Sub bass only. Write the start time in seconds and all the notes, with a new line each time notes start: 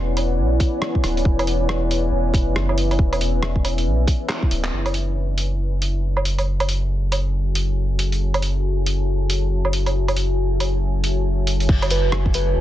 Already playing: E1
0.38 B1
1.04 D1
1.25 E1
2.12 E1
2.34 E1
2.47 F#1
2.99 E1
3.86 B1
4.51 D1
4.73 F#1
11.69 F#1
12.56 F#1